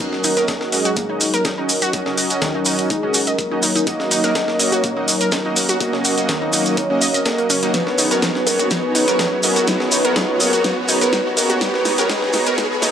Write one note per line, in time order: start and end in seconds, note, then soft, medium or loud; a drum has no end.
0.00 11.57 F#3 medium
0.00 0.34 C#4 medium
0.00 11.57 C#4 medium
0.00 5.77 D#4 medium
0.00 0.34 F#4 medium
0.00 0.74 A#4 loud
0.00 7.70 A#4 medium
0.00 0.34 D#5 loud
0.00 kick loud
0.00 closed hi-hat medium
0.00 riser medium
0.00 maracas soft
0.13 snare soft
0.24 0.34 D#4 loud
0.24 closed hi-hat medium
0.24 open hi-hat loud
0.24 maracas medium
0.37 0.70 C#4 medium
0.37 0.70 F#4 medium
0.37 0.43 A#4 loud
0.37 0.70 D#5 medium
0.37 snare medium
0.37 closed hi-hat medium
0.37 maracas soft
0.48 0.55 D#4 medium
0.48 kick loud
0.48 snare loud
0.48 closed hi-hat medium
0.48 maracas soft
0.61 snare soft
0.72 0.94 C#4 medium
0.72 0.94 F#4 medium
0.72 1.36 G#4 loud
0.72 0.76 D#5 medium
0.72 0.94 D#5 medium
0.72 snare soft
0.72 closed hi-hat medium
0.72 open hi-hat loud
0.72 maracas medium
0.85 0.91 F#4 loud
0.85 closed hi-hat medium
0.85 maracas soft
0.96 1.01 A#3 medium
0.96 kick loud
0.96 closed hi-hat medium
0.96 maracas soft
1.09 1.22 C#4 medium
1.09 1.13 D#4 medium
1.09 1.22 F#4 medium
1.09 1.22 D#5 loud
1.21 closed hi-hat medium
1.21 open hi-hat loud
1.21 maracas medium
1.34 1.39 A#4 loud
1.34 closed hi-hat medium
1.34 maracas soft
1.45 1.52 D#4 medium
1.45 kick loud
1.45 snare loud
1.45 closed hi-hat medium
1.45 maracas soft
1.58 1.71 C#4 medium
1.58 1.67 D#4 medium
1.58 1.71 F#4 medium
1.58 1.71 D#5 loud
1.69 closed hi-hat medium
1.69 open hi-hat loud
1.69 maracas medium
1.82 1.88 F#4 loud
1.82 closed hi-hat medium
1.82 maracas soft
1.93 2.27 C#4 medium
1.93 2.27 F#4 medium
1.93 2.00 F#4 medium
1.93 2.27 D#5 loud
1.93 kick loud
1.93 closed hi-hat medium
1.93 closed hi-hat soft
1.93 maracas soft
2.06 2.12 C#4 medium
2.06 snare soft
2.17 2.24 F#4 medium
2.17 closed hi-hat medium
2.17 open hi-hat loud
2.17 maracas medium
2.30 2.63 C#4 medium
2.30 2.63 F#4 medium
2.30 2.63 D#5 medium
2.30 closed hi-hat medium
2.30 maracas medium
2.42 2.46 D#3 loud
2.42 kick loud
2.42 snare loud
2.42 closed hi-hat soft
2.42 closed hi-hat medium
2.42 maracas soft
2.55 2.63 D#4 medium
2.65 2.88 C#4 medium
2.65 2.73 D#4 medium
2.65 2.88 F#4 medium
2.65 2.88 D#5 medium
2.65 open hi-hat loud
2.65 open hi-hat medium
2.65 maracas medium
2.78 closed hi-hat medium
2.78 maracas medium
2.90 3.00 D#4 medium
2.90 3.34 G#4 medium
2.90 kick loud
2.90 closed hi-hat soft
2.90 closed hi-hat medium
2.90 maracas soft
3.03 3.16 C#4 medium
3.03 3.09 C#4 medium
3.03 3.16 F#4 medium
3.03 3.16 D#5 loud
3.14 3.21 F#4 medium
3.14 closed hi-hat medium
3.14 open hi-hat loud
3.14 maracas loud
3.27 3.33 D#5 medium
3.27 closed hi-hat medium
3.27 maracas medium
3.38 3.82 A#4 medium
3.38 kick loud
3.38 closed hi-hat soft
3.38 maracas soft
3.51 3.64 C#4 medium
3.51 3.60 D#4 medium
3.51 3.64 F#4 medium
3.51 3.64 D#5 loud
3.63 3.69 D#4 medium
3.63 closed hi-hat medium
3.63 open hi-hat loud
3.63 maracas medium
3.75 3.81 D#4 medium
3.75 closed hi-hat medium
3.75 maracas medium
3.87 4.21 A#3 medium
3.87 3.93 D#4 medium
3.87 4.21 F#4 medium
3.87 4.61 D#5 loud
3.87 4.21 D#5 loud
3.87 kick loud
3.87 closed hi-hat medium
3.87 maracas soft
4.00 snare soft
4.11 4.21 D#4 loud
4.11 closed hi-hat medium
4.11 open hi-hat loud
4.11 maracas loud
4.24 4.57 A#3 medium
4.24 4.57 F#4 medium
4.24 4.30 A#4 loud
4.24 4.57 D#5 medium
4.24 snare medium
4.24 closed hi-hat medium
4.24 maracas medium
4.35 4.42 D#4 medium
4.35 kick loud
4.35 snare loud
4.35 closed hi-hat medium
4.35 closed hi-hat soft
4.35 maracas soft
4.48 snare medium
4.59 4.81 A#3 medium
4.59 4.81 F#4 medium
4.59 5.23 C#5 loud
4.59 4.81 D#5 medium
4.59 4.63 D#5 medium
4.59 snare soft
4.59 closed hi-hat medium
4.59 open hi-hat loud
4.59 maracas medium
4.72 4.78 F#4 loud
4.72 closed hi-hat medium
4.72 maracas soft
4.84 4.88 A#3 medium
4.84 kick loud
4.84 closed hi-hat medium
4.84 closed hi-hat soft
4.84 maracas soft
4.96 5.10 A#3 loud
4.96 5.00 D#4 medium
4.96 5.10 F#4 medium
4.96 5.10 D#5 loud
5.08 closed hi-hat medium
5.08 open hi-hat loud
5.08 maracas medium
5.21 5.27 A#4 medium
5.21 closed hi-hat medium
5.21 maracas medium
5.32 5.39 D#4 medium
5.32 kick loud
5.32 snare loud
5.32 closed hi-hat medium
5.32 closed hi-hat soft
5.32 maracas soft
5.45 5.58 A#3 medium
5.45 5.54 D#4 medium
5.45 5.58 F#4 medium
5.45 5.58 D#5 loud
5.56 closed hi-hat medium
5.56 open hi-hat loud
5.56 maracas medium
5.69 5.75 F#4 loud
5.69 closed hi-hat medium
5.69 maracas medium
5.80 6.14 A#3 medium
5.80 6.14 F#4 medium
5.80 5.87 F#4 medium
5.80 6.14 D#5 loud
5.80 7.72 F5 medium
5.80 kick loud
5.80 closed hi-hat medium
5.80 closed hi-hat soft
5.80 maracas soft
5.93 5.99 C#4 medium
5.93 snare soft
6.05 6.11 F#4 medium
6.05 closed hi-hat medium
6.05 open hi-hat loud
6.05 maracas medium
6.17 6.50 A#3 medium
6.17 6.50 F#4 medium
6.17 6.50 D#5 medium
6.17 closed hi-hat medium
6.17 maracas medium
6.29 6.33 D#3 loud
6.29 kick loud
6.29 snare loud
6.29 closed hi-hat medium
6.29 closed hi-hat soft
6.29 maracas soft
6.42 6.50 D#4 medium
6.53 6.75 A#3 medium
6.53 6.60 D#4 medium
6.53 6.75 F#4 medium
6.53 6.75 D#5 medium
6.53 open hi-hat medium
6.53 open hi-hat loud
6.53 maracas loud
6.66 closed hi-hat medium
6.66 maracas medium
6.77 6.87 D#4 medium
6.77 7.21 C#5 medium
6.77 kick loud
6.77 closed hi-hat medium
6.77 closed hi-hat soft
6.77 maracas soft
6.90 7.03 A#3 loud
6.90 6.96 C#4 medium
6.90 7.03 F#4 medium
6.90 7.03 D#5 loud
7.01 7.08 D#5 loud
7.01 closed hi-hat medium
7.01 open hi-hat loud
7.01 maracas medium
7.14 7.20 D#5 medium
7.14 closed hi-hat medium
7.14 maracas medium
7.26 7.48 A#3 medium
7.26 7.48 F#4 medium
7.26 7.70 A#4 medium
7.26 7.48 D#5 medium
7.26 kick loud
7.26 snare loud
7.26 closed hi-hat medium
7.26 closed hi-hat soft
7.26 maracas soft
7.38 7.42 A#4 medium
7.38 closed hi-hat soft
7.50 7.54 C#4 loud
7.50 closed hi-hat medium
7.50 open hi-hat loud
7.50 maracas loud
7.63 7.72 A#3 medium
7.63 7.68 D#4 medium
7.63 7.72 F#4 medium
7.63 7.72 D#5 loud
7.63 closed hi-hat medium
7.63 maracas medium
7.74 8.08 B3 medium
7.74 12.91 B3 medium
7.74 7.81 D#4 medium
7.74 8.08 F#4 medium
7.74 11.57 G#4 medium
7.74 8.46 B4 medium
7.74 8.08 C#5 medium
7.74 kick loud
7.74 snare soft
7.74 closed hi-hat medium
7.74 closed hi-hat soft
7.74 maracas soft
7.87 snare soft
7.98 8.08 D#4 medium
7.98 closed hi-hat medium
7.98 open hi-hat loud
7.98 maracas medium
8.11 8.44 B3 medium
8.11 8.44 F#4 medium
8.11 8.17 A#4 medium
8.11 8.44 C#5 medium
8.11 snare medium
8.11 closed hi-hat medium
8.11 maracas medium
8.22 8.29 D#4 medium
8.22 kick loud
8.22 snare loud
8.22 snare medium
8.22 closed hi-hat medium
8.22 closed hi-hat soft
8.22 maracas soft
8.35 snare medium
8.46 8.69 B3 medium
8.46 8.69 F#4 medium
8.46 8.69 A#4 medium
8.46 8.69 C#5 medium
8.46 8.51 D#5 medium
8.46 snare soft
8.46 closed hi-hat medium
8.46 open hi-hat loud
8.46 maracas medium
8.59 8.65 F#4 medium
8.59 closed hi-hat medium
8.59 maracas medium
8.70 9.05 B3 medium
8.70 8.77 D#4 medium
8.70 9.05 F#4 medium
8.70 9.43 B4 loud
8.70 9.05 C#5 loud
8.70 kick loud
8.70 snare medium
8.70 closed hi-hat medium
8.70 maracas soft
8.95 9.05 D#4 loud
8.95 closed hi-hat medium
8.95 open hi-hat loud
8.95 maracas medium
9.08 9.41 B3 medium
9.08 9.41 F#4 medium
9.08 9.14 A#4 medium
9.08 9.41 C#5 medium
9.08 closed hi-hat medium
9.08 maracas medium
9.19 9.26 D#4 medium
9.19 kick loud
9.19 snare loud
9.19 snare medium
9.19 closed hi-hat medium
9.19 closed hi-hat soft
9.19 maracas soft
9.43 9.65 B3 medium
9.43 9.65 F#4 medium
9.43 9.66 A#4 medium
9.43 9.65 C#5 medium
9.43 9.47 D#5 medium
9.43 closed hi-hat medium
9.43 open hi-hat loud
9.43 maracas medium
9.56 9.62 F#4 medium
9.56 closed hi-hat medium
9.56 maracas medium
9.67 10.02 B3 medium
9.67 9.74 D#4 medium
9.67 10.02 F#4 medium
9.67 10.39 B4 loud
9.67 10.02 C#5 loud
9.67 kick loud
9.67 snare medium
9.67 closed hi-hat medium
9.67 maracas soft
9.80 snare medium
9.92 10.02 D#4 medium
9.92 closed hi-hat medium
9.92 open hi-hat loud
9.92 maracas medium
10.04 10.37 B3 medium
10.04 10.37 F#4 medium
10.04 10.10 A#4 medium
10.04 10.37 C#5 medium
10.04 closed hi-hat medium
10.04 maracas soft
10.16 10.22 D#4 medium
10.16 kick loud
10.16 snare loud
10.16 snare medium
10.16 closed hi-hat medium
10.16 closed hi-hat soft
10.16 maracas soft
10.40 10.62 B3 medium
10.40 10.62 F#4 medium
10.40 10.63 A#4 medium
10.40 10.62 C#5 medium
10.40 10.44 D#5 medium
10.40 open hi-hat medium
10.40 open hi-hat loud
10.40 maracas medium
10.53 10.59 F#4 loud
10.53 closed hi-hat medium
10.53 maracas medium
10.64 10.98 B3 medium
10.64 10.71 D#4 medium
10.64 10.98 F#4 medium
10.64 10.98 C#5 loud
10.64 kick loud
10.64 snare medium
10.64 closed hi-hat medium
10.64 maracas soft
10.88 10.98 D#4 loud
10.88 closed hi-hat medium
10.88 open hi-hat loud
10.88 maracas medium
11.01 11.34 B3 medium
11.01 11.34 F#4 medium
11.01 11.07 A#4 medium
11.01 11.34 C#5 medium
11.01 closed hi-hat medium
11.01 maracas medium
11.13 11.19 D#4 medium
11.13 kick loud
11.13 snare medium
11.13 closed hi-hat soft
11.13 maracas soft
11.37 11.59 B3 medium
11.37 11.59 F#4 medium
11.37 11.59 A#4 medium
11.37 11.59 C#5 medium
11.37 11.41 D#5 medium
11.37 closed hi-hat medium
11.37 open hi-hat loud
11.37 maracas loud
11.50 11.56 F#4 loud
11.50 closed hi-hat medium
11.50 maracas soft
11.61 12.91 F#3 medium
11.61 11.95 B3 medium
11.61 11.68 D#4 medium
11.61 12.91 D#4 medium
11.61 11.95 F#4 medium
11.61 12.08 B4 loud
11.61 11.95 C#5 loud
11.61 12.91 A#5 medium
11.61 kick loud
11.61 snare medium
11.61 closed hi-hat medium
11.61 maracas soft
11.74 snare soft
11.85 11.95 D#4 loud
11.85 snare medium
11.85 closed hi-hat medium
11.85 open hi-hat loud
11.85 maracas medium
11.98 12.08 B3 medium
11.98 12.08 F#4 medium
11.98 12.04 A#4 loud
11.98 12.08 C#5 medium
11.98 snare medium
11.98 closed hi-hat medium
11.98 maracas medium
12.09 12.44 B3 medium
12.09 12.16 D#4 medium
12.09 12.44 F#4 medium
12.09 12.56 B4 loud
12.09 12.44 C#5 loud
12.09 kick loud
12.09 snare loud
12.09 snare medium
12.09 closed hi-hat medium
12.09 closed hi-hat soft
12.09 maracas soft
12.22 snare medium
12.33 12.44 D#4 loud
12.33 snare medium
12.33 snare soft
12.33 closed hi-hat medium
12.33 open hi-hat medium
12.33 maracas medium
12.46 12.56 B3 medium
12.46 12.56 F#4 medium
12.46 12.52 A#4 loud
12.46 12.56 C#5 loud
12.46 closed hi-hat medium
12.46 maracas soft
12.58 12.91 B3 medium
12.58 12.64 D#4 medium
12.58 12.91 F#4 medium
12.58 12.91 B4 loud
12.58 12.91 C#5 loud
12.58 kick loud
12.58 snare medium
12.58 closed hi-hat medium
12.58 maracas soft
12.82 12.91 D#4 loud
12.82 snare medium
12.82 closed hi-hat medium
12.82 open hi-hat loud
12.82 maracas medium